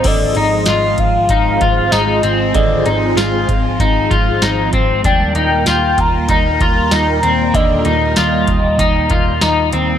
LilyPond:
<<
  \new Staff \with { instrumentName = "Soft synth lead" } { \time 4/4 \key aes \lydian \tempo 4 = 96 ees''4. f''4~ f''16 f''16 ees''4 | ees''4. r2 r8 | g''8 g''4 bes''8 bes''2 | ees''4 ees''2~ ees''8 r8 | }
  \new Staff \with { instrumentName = "Clean electric guitar" } { \time 4/4 \key aes \lydian d8 ees'8 f'4 ees'8 f'8 ees'8 c'8 | d8 ees'8 f'4 ees'8 f'8 ees'8 c'8 | d'8 ees'8 f'4 ees'8 f'8 ees'8 c'8 | d8 ees'8 f'4 ees'8 f'8 ees'8 c'8 | }
  \new Staff \with { instrumentName = "String machine" } { \clef bass \time 4/4 \key aes \lydian <f aes c'>1~ | <f aes c'>1 | <bes, g bes>1~ | <bes, g bes>1 | }
  \new Staff \with { instrumentName = "Picked electric bass" } { \clef bass \time 4/4 \key aes \lydian aes,,8 aes,,8 aes,,8 aes,,8 aes,,8 aes,,8 aes,,8 aes,,8 | aes,,8 aes,,8 aes,,8 aes,,8 aes,,8 aes,,8 aes,,8 aes,,8 | ees,8 ees,8 ees,8 ees,8 ees,8 ees,8 ees,8 ees,8 | ees,8 ees,8 ees,8 ees,8 ees,8 ees,8 ees,8 ees,8 | }
  \new DrumStaff \with { instrumentName = "Drums" } \drummode { \time 4/4 <cymc hh bd>8 hh8 <hh sn tamb>8 <hh bd>8 <hh bd>8 <hh bd>8 <hh sn tamb>8 hh8 | <hh bd>8 hh8 <hh sn tamb>8 <hh bd>8 <hh bd>8 <hh bd>8 <hh sn tamb>8 <hh bd>8 | <hh bd>8 hh8 <hh sn tamb>8 <hh bd>8 <hh bd>8 <hh bd>8 <hh sn tamb>8 hh8 | <hh bd>8 hh8 <hh sn tamb>8 <hh bd>8 <hh bd>8 <hh bd>8 <hh sn tamb>8 hh8 | }
>>